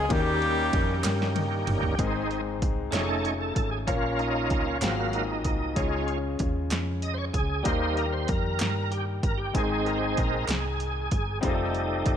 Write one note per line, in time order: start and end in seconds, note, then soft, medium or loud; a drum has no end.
0.00 0.12 C#3 medium
0.00 0.12 G#3 medium
0.00 0.10 A#3 medium
0.00 0.10 C#4 medium
0.00 0.12 F4 medium
0.00 0.12 G#4 medium
0.09 0.69 D#2 loud
0.09 1.95 D#3 medium
0.09 1.01 D#3 medium
0.09 1.94 G3 medium
0.09 1.95 G3 medium
0.09 1.36 G3 medium
0.09 1.95 A#3 medium
0.09 1.33 A#3 medium
0.09 1.95 C#4 soft
0.09 1.95 C#4 medium
0.09 1.33 C#4 medium
0.09 1.96 D#4 medium
0.09 0.16 F#4 medium
0.09 0.18 F#4 medium
0.09 1.36 G4 loud
0.09 kick loud
0.09 ride medium
0.17 1.98 G4 medium
0.17 1.99 G4 medium
0.42 ride soft
0.73 1.02 F2 medium
0.73 kick medium
0.73 ride medium
1.04 1.63 G2 medium
1.04 snare medium
1.04 clap loud
1.04 ride medium
1.22 snare medium
1.36 high tom medium
1.36 ride soft
1.67 1.96 G1 medium
1.67 mid tom medium
1.67 ride medium
1.83 floor tom loud
1.99 2.62 G#1 medium
1.99 2.89 G#2 medium
1.99 2.93 G#3 medium
1.99 2.41 G#3 soft
1.99 2.93 C4 medium
1.99 2.41 C4 soft
1.99 2.92 D#4 medium
1.99 2.41 D#4 soft
1.99 2.94 G#4 medium
1.99 2.06 A#4 medium
1.99 kick medium
1.99 closed hi-hat medium
2.07 2.97 C5 medium
2.31 closed hi-hat soft
2.62 2.91 C2 medium
2.62 kick medium
2.62 closed hi-hat medium
2.91 3.52 F1 medium
2.91 3.34 A3 soft
2.91 3.87 A3 medium
2.91 3.34 C#4 soft
2.91 3.86 C#4 soft
2.91 3.35 D#4 soft
2.91 3.88 D#4 soft
2.91 3.87 F4 soft
2.91 3.00 G4 medium
2.91 3.09 C#5 medium
2.91 clap medium
2.91 closed hi-hat medium
2.95 snare medium
3.00 3.91 G#4 medium
3.09 3.25 A4 medium
3.24 3.31 C#5 medium
3.24 closed hi-hat soft
3.41 3.54 A4 medium
3.55 3.85 G#1 medium
3.55 3.70 A4 medium
3.55 kick medium
3.55 closed hi-hat medium
3.71 3.78 G#4 medium
3.87 4.51 A#1 medium
3.87 4.78 A#2 medium
3.87 4.80 A#3 medium
3.87 4.78 A#3 soft
3.87 4.66 C#4 soft
3.87 4.82 C#4 medium
3.87 4.81 F4 medium
3.87 4.78 F4 medium
3.87 4.82 A#4 medium
3.87 4.83 C#5 medium
3.87 kick medium
3.87 closed hi-hat medium
4.19 4.50 D#4 medium
4.19 closed hi-hat soft
4.50 4.83 C#2 medium
4.50 4.67 D#4 medium
4.50 kick medium
4.50 closed hi-hat medium
4.67 4.83 C#4 medium
4.82 5.45 G#1 loud
4.82 5.73 G#2 medium
4.82 5.24 F#3 medium
4.82 5.76 A#3 medium
4.82 5.24 A#3 soft
4.82 5.77 C4 medium
4.82 4.97 C4 medium
4.82 5.75 F4 medium
4.82 5.77 F#4 medium
4.82 5.76 G#4 medium
4.82 5.24 F5 medium
4.82 snare loud
4.82 clap medium
4.82 closed hi-hat medium
5.13 6.04 D#4 medium
5.13 closed hi-hat soft
5.45 5.74 C2 medium
5.45 kick medium
5.45 closed hi-hat medium
5.75 6.36 C#2 medium
5.75 6.67 C#3 medium
5.75 7.61 G#3 medium
5.75 6.18 G#3 soft
5.75 7.61 C#4 medium
5.75 6.18 C#4 soft
5.75 7.62 F4 medium
5.75 6.19 F4 soft
5.75 7.62 G#4 medium
5.75 7.63 C#5 medium
5.75 kick medium
5.75 closed hi-hat medium
6.08 closed hi-hat soft
6.39 6.69 D#2 medium
6.39 kick medium
6.39 closed hi-hat medium
6.70 7.30 F2 medium
6.70 snare loud
6.70 clap medium
6.70 closed hi-hat medium
7.02 7.15 D#5 medium
7.02 closed hi-hat soft
7.14 7.18 C5 medium
7.18 7.25 C#5 loud
7.33 7.63 C#2 medium
7.33 7.66 G#4 medium
7.33 kick medium
7.33 closed hi-hat medium
7.63 8.25 D#2 medium
7.63 8.56 D#3 medium
7.63 8.06 G3 soft
7.63 9.50 G3 medium
7.63 8.06 A#3 soft
7.63 9.50 A#3 medium
7.63 8.07 D#4 soft
7.63 9.51 D#4 medium
7.63 7.98 C5 medium
7.63 kick medium
7.63 closed hi-hat medium
7.67 9.51 G4 medium
7.67 9.52 A#4 medium
7.97 8.14 A#4 medium
7.97 closed hi-hat soft
8.13 8.29 C5 medium
8.28 8.58 F2 medium
8.28 8.93 A#4 medium
8.28 kick medium
8.28 closed hi-hat medium
8.59 9.19 G2 medium
8.59 snare medium
8.59 clap medium
8.59 closed hi-hat medium
8.91 9.05 G4 medium
8.91 closed hi-hat soft
9.23 9.52 G1 medium
9.23 9.40 A#4 medium
9.23 kick medium
9.23 closed hi-hat medium
9.38 9.54 G4 medium
9.53 10.14 G#1 medium
9.53 10.45 G#2 medium
9.53 11.39 G#3 medium
9.53 10.45 G#3 soft
9.53 11.39 C4 medium
9.53 10.45 C4 soft
9.53 11.39 D#4 medium
9.53 10.46 D#4 soft
9.53 11.40 G#4 medium
9.53 9.88 G#4 medium
9.53 9.62 A#4 soft
9.53 kick medium
9.53 closed hi-hat medium
9.63 11.43 C5 medium
9.86 9.98 A#4 medium
9.86 closed hi-hat soft
9.98 10.02 G4 medium
10.02 10.18 G#4 medium
10.17 10.47 A#1 medium
10.17 10.51 A#4 medium
10.17 kick medium
10.17 closed hi-hat medium
10.48 11.07 C2 medium
10.48 11.39 G#4 medium
10.48 snare loud
10.48 clap medium
10.48 closed hi-hat medium
10.80 closed hi-hat soft
11.11 11.41 G1 medium
11.11 kick medium
11.11 closed hi-hat medium
11.41 12.02 F1 loud
11.41 12.17 G3 soft
11.41 12.17 A3 soft
11.41 12.17 C4 medium
11.41 12.17 D#4 medium
11.41 12.17 F4 medium
11.41 11.50 G#4 medium
11.41 12.17 C5 medium
11.41 kick medium
11.41 closed hi-hat medium
11.45 12.17 D#4 medium
11.50 12.17 A4 medium
11.75 closed hi-hat soft
12.06 12.17 G1 medium
12.06 kick medium
12.06 closed hi-hat medium